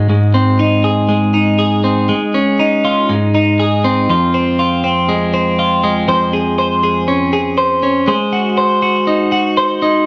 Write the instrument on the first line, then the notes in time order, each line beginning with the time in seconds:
clean electric guitar
0.10 G#2
0.34 C4
0.59 D#4
0.84 G#4
1.09 G#3
1.34 D#4
1.59 G#4
1.84 C4
2.09 G#3
2.34 C#4
2.59 D#4
2.85 F4
3.09 G#2
3.35 D#4
3.60 G#4
3.84 C4
4.09 F2 F4
4.34 C4
4.59 F4
4.84 C4
5.09 G#3
5.34 C4
5.59 F4
5.84 G#3
6.08 F2 C5
6.33 G#4
6.58 C5
6.83 G#4
7.08 C#4
7.33 G#4
7.58 C5
7.83 C#4
8.07 G#3 C5
8.33 F#4
8.58 C5
8.82 F#4
9.07 D#4
9.32 F#4
9.57 C5
9.82 D#4